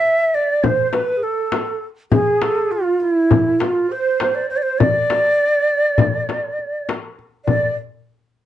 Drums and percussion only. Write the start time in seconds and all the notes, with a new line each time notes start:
0.05 darbuka ka
0.35 darbuka ka
0.64 frame drum, darbuka dum
0.93 darbuka tek, frame drum
1.22 darbuka ka
1.52 darbuka tek, frame drum
2.12 frame drum, darbuka dum
2.42 darbuka tek, frame drum
2.71 darbuka ka
3.02 darbuka ka
3.31 frame drum, darbuka dum
3.60 darbuka tek, frame drum
3.90 darbuka ka
4.20 darbuka tek, frame drum
4.51 darbuka ka
4.80 frame drum, darbuka dum
5.10 darbuka tek, frame drum
5.39 darbuka ka
5.98 darbuka dum, frame drum
6.29 darbuka tek, frame drum
6.59 darbuka ka
6.89 darbuka tek, frame drum
7.19 darbuka ka
7.47 frame drum, darbuka dum